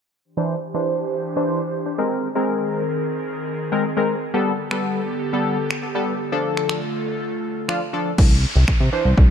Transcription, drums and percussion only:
4.71 finger snap
5.71 finger snap
6.57 finger snap
6.69 finger snap
7.69 finger snap
8.18 kick, crash
8.68 finger snap, kick
9.18 kick

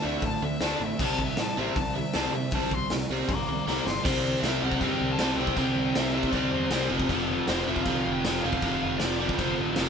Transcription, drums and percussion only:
0.22 kick, open hi-hat
0.60 snare, open hi-hat
0.99 kick, crash
1.19 kick
1.37 snare, open hi-hat
1.76 kick, open hi-hat
2.13 snare, open hi-hat
2.51 kick, open hi-hat
2.71 kick
2.90 snare, open hi-hat
3.29 kick, open hi-hat
3.68 snare
3.87 snare
4.05 kick, crash
4.44 snare, crash
4.72 kick
4.81 kick, crash
5.19 snare, crash
5.47 kick
5.57 kick, crash
5.95 snare, crash
6.23 kick
6.33 kick, crash
6.71 snare, crash
7.00 kick
7.09 kick, crash
7.47 snare, crash
7.76 kick
7.86 kick, crash
8.25 snare, crash
8.53 kick
8.62 kick, crash
9.00 snare, crash
9.29 kick
9.39 kick, crash
9.76 snare, crash

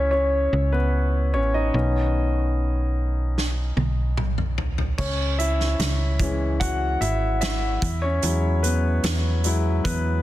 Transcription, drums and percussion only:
3.38 snare
3.77 high tom
4.17 mid tom
4.38 mid tom
4.58 floor tom
4.78 floor tom
4.98 kick, crash
5.40 closed hi-hat
5.60 snare
5.80 snare, closed hi-hat
6.20 kick, closed hi-hat
6.61 kick, closed hi-hat
7.02 closed hi-hat
7.41 snare, closed hi-hat
7.82 kick, closed hi-hat
8.22 closed hi-hat
8.64 closed hi-hat
9.04 snare, closed hi-hat
9.44 closed hi-hat
9.85 kick, closed hi-hat

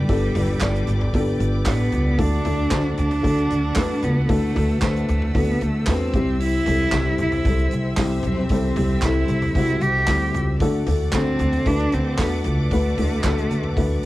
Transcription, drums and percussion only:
0.09 kick, hi-hat pedal, open hi-hat
0.35 floor tom, hi-hat pedal, open hi-hat
0.48 open hi-hat
0.60 kick, snare, clap, hi-hat pedal, open hi-hat
0.75 hi-hat pedal
0.87 hi-hat pedal, open hi-hat
1.01 floor tom
1.14 kick, hi-hat pedal, open hi-hat
1.40 hi-hat pedal, open hi-hat
1.65 kick, snare, clap, hi-hat pedal, open hi-hat
1.92 floor tom, hi-hat pedal, open hi-hat
2.19 kick, hi-hat pedal, open hi-hat
2.45 floor tom, hi-hat pedal, open hi-hat
2.71 kick, snare, clap, hi-hat pedal, open hi-hat
2.97 floor tom, hi-hat pedal, open hi-hat
3.11 floor tom, open hi-hat
3.24 kick, hi-hat pedal, open hi-hat
3.37 hi-hat pedal
3.50 hi-hat pedal, open hi-hat
3.75 kick, snare, clap, hi-hat pedal, open hi-hat
4.02 floor tom, hi-hat pedal, open hi-hat
4.29 kick, hi-hat pedal, open hi-hat
4.56 floor tom, hi-hat pedal, open hi-hat
4.69 open hi-hat
4.82 kick, snare, clap, hi-hat pedal, open hi-hat
4.95 hi-hat pedal
5.08 floor tom, hi-hat pedal, open hi-hat
5.22 floor tom
5.35 kick, hi-hat pedal, open hi-hat
5.61 hi-hat pedal, open hi-hat
5.86 kick, snare, clap, hi-hat pedal, open hi-hat
6.14 kick, floor tom, hi-hat pedal, open hi-hat
6.40 hi-hat pedal, open hi-hat
6.66 floor tom, hi-hat pedal, open hi-hat
6.92 kick, snare, clap, hi-hat pedal, open hi-hat
7.18 floor tom, hi-hat pedal, open hi-hat
7.32 floor tom, open hi-hat
7.45 kick, hi-hat pedal, open hi-hat
7.58 hi-hat pedal
7.71 hi-hat pedal, open hi-hat
7.97 kick, snare, clap, hi-hat pedal, open hi-hat
8.23 floor tom, hi-hat pedal, open hi-hat
8.49 kick, hi-hat pedal, open hi-hat
8.76 floor tom, hi-hat pedal, open hi-hat
9.02 kick, snare, clap, hi-hat pedal, open hi-hat
9.28 hi-hat pedal, open hi-hat
9.42 floor tom, open hi-hat
9.55 kick, hi-hat pedal, open hi-hat
9.68 hi-hat pedal
9.81 hi-hat pedal, open hi-hat
10.07 kick, snare, clap, hi-hat pedal, open hi-hat
10.34 floor tom, hi-hat pedal, open hi-hat
10.60 kick, hi-hat pedal, open hi-hat
10.87 floor tom, hi-hat pedal, open hi-hat
11.12 kick, snare, clap, hi-hat pedal, open hi-hat
11.39 floor tom, hi-hat pedal, open hi-hat
11.53 floor tom, open hi-hat
11.66 kick, hi-hat pedal, open hi-hat
11.79 hi-hat pedal
11.92 hi-hat pedal, open hi-hat
12.18 kick, snare, clap, hi-hat pedal, open hi-hat
12.44 floor tom, hi-hat pedal, open hi-hat
12.71 kick, hi-hat pedal, open hi-hat
12.98 floor tom, hi-hat pedal, open hi-hat
13.11 open hi-hat
13.24 kick, snare, clap, hi-hat pedal, open hi-hat
13.38 hi-hat pedal
13.51 hi-hat pedal, open hi-hat
13.64 floor tom
13.77 kick, hi-hat pedal, open hi-hat

